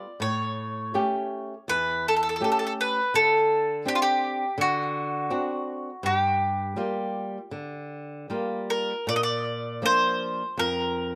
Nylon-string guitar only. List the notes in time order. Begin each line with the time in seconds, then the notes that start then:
0.20 A2
0.94 A3 C#4 G4
1.68 E2
2.40 A3 C#4 G4
3.14 D3
3.85 C4 D4 G4
4.58 D3
5.30 C4 D4 F#4
6.03 G2
6.76 G3 A#3 F4
7.51 D3
8.30 G3 A#3 F4
9.07 A#2
9.82 F3 A#3 D4
10.57 F2